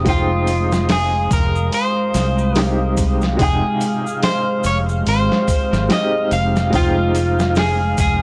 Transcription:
0.00 1.28 F1 medium
0.00 0.04 G#3 medium
0.00 8.22 G#3 medium
0.00 0.06 C4 medium
0.00 0.08 D#4 medium
0.00 2.58 G4 medium
0.00 8.22 F5 medium
0.00 3.35 D#6 medium
0.04 2.51 G#3 medium
0.04 2.52 C4 medium
0.04 2.53 D#4 medium
0.04 kick loud
0.04 open hi-hat medium
0.04 maracas soft
0.09 0.87 F4 medium
0.09 2.54 G5 medium
0.47 open hi-hat medium
0.47 maracas medium
0.72 snare soft
0.72 maracas soft
0.89 1.33 G#4 medium
0.89 snare loud
0.89 open hi-hat medium
0.89 maracas soft
1.31 1.69 F1 medium
1.31 1.71 A#4 loud
1.31 kick loud
1.31 open hi-hat medium
1.31 maracas medium
1.56 maracas soft
1.72 2.56 C5 loud
1.72 open hi-hat medium
1.72 maracas soft
2.14 3.36 C2 medium
2.14 snare soft
2.14 open hi-hat medium
2.14 maracas medium
2.38 maracas soft
2.55 3.35 G#3 medium
2.55 3.35 C4 medium
2.55 3.36 D#4 medium
2.55 3.36 G4 medium
2.55 2.94 A#4 loud
2.55 snare loud
2.55 open hi-hat medium
2.55 maracas soft
2.97 kick medium
2.97 open hi-hat medium
2.97 maracas medium
3.21 snare soft
3.21 maracas soft
3.37 3.61 F1 medium
3.37 5.85 C3 medium
3.37 5.84 G#3 medium
3.37 5.86 D#4 medium
3.37 8.22 F6 medium
3.37 kick loud
3.37 open hi-hat medium
3.37 maracas soft
3.42 4.23 G#4 medium
3.42 5.87 G5 medium
3.81 open hi-hat medium
3.81 maracas medium
4.07 maracas soft
4.23 4.66 C5 medium
4.23 snare loud
4.23 open hi-hat medium
4.23 maracas soft
4.64 5.02 F1 medium
4.64 4.77 C#5 medium
4.64 open hi-hat medium
4.64 maracas medium
4.89 maracas soft
5.06 5.28 G#1 medium
5.06 5.92 C5 loud
5.06 open hi-hat medium
5.06 maracas soft
5.32 snare soft
5.48 kick medium
5.48 open hi-hat medium
5.48 maracas medium
5.73 5.88 G#1 loud
5.73 snare soft
5.73 maracas soft
5.89 6.68 G#3 medium
5.89 6.69 C4 medium
5.89 6.69 D#4 medium
5.89 6.69 G4 medium
5.89 6.33 D#5 loud
5.89 snare loud
5.89 open hi-hat medium
5.89 maracas soft
6.31 7.95 F1 loud
6.31 6.75 F5 loud
6.31 open hi-hat medium
6.31 maracas medium
6.56 snare soft
6.56 maracas soft
6.70 8.22 G#3 medium
6.70 8.22 C4 medium
6.70 8.22 D#4 medium
6.70 kick loud
6.70 open hi-hat medium
6.70 maracas soft
6.75 7.60 F4 loud
6.75 8.22 G5 medium
7.15 open hi-hat medium
7.15 maracas medium
7.39 snare medium
7.39 maracas soft
7.55 7.99 G#4 medium
7.55 snare loud
7.55 open hi-hat medium
7.55 maracas soft
7.98 8.22 F1 medium
7.98 8.22 G#4 medium
7.98 kick medium
7.98 open hi-hat medium
7.98 maracas medium

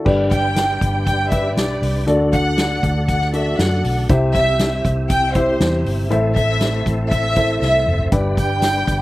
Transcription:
0.05 0.78 G1 medium
0.05 0.77 G2 medium
0.05 2.06 G3 medium
0.05 1.00 D4 medium
0.05 2.06 D4 medium
0.05 1.00 G4 medium
0.05 1.00 B4 medium
0.05 2.06 B4 medium
0.05 1.00 D5 medium
0.05 kick loud
0.05 crash medium
0.31 1.03 G5 medium
0.31 kick medium
0.31 closed hi-hat medium
0.56 snare medium
0.56 closed hi-hat medium
0.81 1.57 G1 medium
0.81 kick medium
0.81 closed hi-hat medium
1.07 1.30 G5 medium
1.07 kick medium
1.07 closed hi-hat medium
1.31 2.02 D4 medium
1.31 2.03 G4 medium
1.31 2.03 B4 medium
1.31 1.55 E5 medium
1.31 2.03 E5 medium
1.31 kick medium
1.31 closed hi-hat medium
1.57 1.80 B1 medium
1.57 1.93 D5 medium
1.57 snare loud
1.57 closed hi-hat medium
1.82 2.06 C2 medium
1.82 open hi-hat medium
2.07 2.79 D2 loud
2.07 2.79 D3 medium
2.07 4.08 D3 medium
2.07 4.08 A3 medium
2.07 3.01 D4 medium
2.07 3.01 F#4 medium
2.07 4.08 F#4 medium
2.07 3.02 A4 medium
2.07 3.02 D5 loud
2.07 closed hi-hat medium
2.33 3.05 F#5 loud
2.33 kick medium
2.33 closed hi-hat medium
2.58 snare loud
2.58 closed hi-hat medium
2.83 3.55 D2 medium
2.83 kick medium
2.83 closed hi-hat medium
3.08 3.32 F#5 medium
3.08 kick medium
3.08 closed hi-hat medium
3.21 snare soft
3.33 4.04 D4 medium
3.33 4.04 F#4 medium
3.33 4.04 A4 medium
3.33 4.04 D5 medium
3.33 3.58 E5 medium
3.33 closed hi-hat medium
3.59 3.82 F#2 medium
3.59 3.97 F#5 medium
3.59 snare loud
3.59 closed hi-hat medium
3.84 4.07 B1 medium
3.84 open hi-hat medium
4.09 4.81 C2 loud
4.09 6.09 C3 medium
4.09 4.81 C3 medium
4.09 6.09 G3 medium
4.09 8.08 E4 medium
4.09 5.03 E4 medium
4.09 5.03 G4 medium
4.09 5.04 C5 medium
4.09 5.04 E5 medium
4.09 kick loud
4.09 closed hi-hat loud
4.35 4.81 E5 loud
4.35 kick medium
4.35 closed hi-hat medium
4.59 snare medium
4.59 closed hi-hat medium
4.85 5.57 C2 loud
4.85 kick medium
4.85 closed hi-hat medium
5.10 5.34 G5 loud
5.10 kick medium
5.10 closed hi-hat medium
5.35 6.06 E4 medium
5.35 6.06 G4 medium
5.35 5.86 C5 medium
5.35 6.06 C5 medium
5.35 6.06 E5 medium
5.35 kick medium
5.35 closed hi-hat medium
5.60 5.84 E2 medium
5.60 snare loud
5.60 closed hi-hat medium
5.86 6.09 G1 medium
5.86 open hi-hat medium
6.10 6.83 A1 loud
6.10 6.82 A2 medium
6.10 8.10 A3 medium
6.10 8.10 C4 medium
6.10 7.05 E4 medium
6.10 7.05 A4 medium
6.10 7.05 C5 medium
6.10 7.05 E5 medium
6.10 closed hi-hat medium
6.36 6.83 E5 loud
6.36 kick medium
6.36 closed hi-hat medium
6.61 snare medium
6.61 closed hi-hat loud
6.86 7.58 A1 medium
6.86 kick medium
6.86 closed hi-hat medium
7.11 7.59 E5 loud
7.11 kick medium
7.11 closed hi-hat medium
7.36 8.07 E4 medium
7.36 8.07 A4 medium
7.36 8.07 C5 medium
7.36 8.07 E5 medium
7.36 kick medium
7.36 closed hi-hat medium
7.62 7.85 C2 medium
7.62 7.97 E5 loud
7.62 snare medium
7.87 8.10 F#1 medium
7.87 mid tom medium
7.99 floor tom medium
8.12 8.84 G1 loud
8.12 8.84 G2 medium
8.12 9.02 G3 medium
8.12 9.02 D4 medium
8.12 9.02 G4 medium
8.12 9.02 B4 medium
8.12 9.02 D5 medium
8.12 kick loud
8.12 closed hi-hat medium
8.12 tambourine soft
8.37 9.02 G5 loud
8.37 kick medium
8.37 closed hi-hat medium
8.37 tambourine soft
8.62 snare medium
8.62 closed hi-hat medium
8.62 tambourine medium
8.87 9.02 G1 medium
8.87 kick medium
8.87 closed hi-hat medium
8.87 tambourine soft

